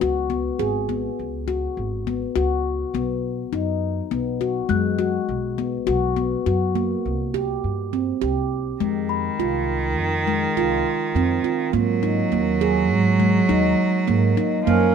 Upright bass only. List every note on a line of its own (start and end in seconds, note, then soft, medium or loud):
0.02 0.48 C#2 medium
0.60 1.07 G#1 medium
1.19 1.66 C#2 medium
1.77 2.24 G#1 medium
2.36 2.82 C#2 medium
2.94 3.41 B1 medium
3.52 3.99 F#2 medium
4.11 4.58 B1 medium
4.70 5.17 F#2 medium
5.29 5.75 B1 medium
5.88 6.34 B1 medium
6.46 6.93 F#2 medium
7.05 7.52 C2 medium
7.64 8.11 G2 medium
8.22 8.69 C2 medium
8.80 9.27 F2 medium
9.39 9.98 C2 medium
9.98 10.45 F2 medium
10.57 10.80 C2 medium
11.15 11.38 F2 medium
11.73 12.20 G#2 medium
12.33 12.92 D#2 medium
12.92 13.38 G#2 medium
13.50 13.73 D#2 medium
14.08 14.32 G#2 medium
14.67 14.95 F#2 medium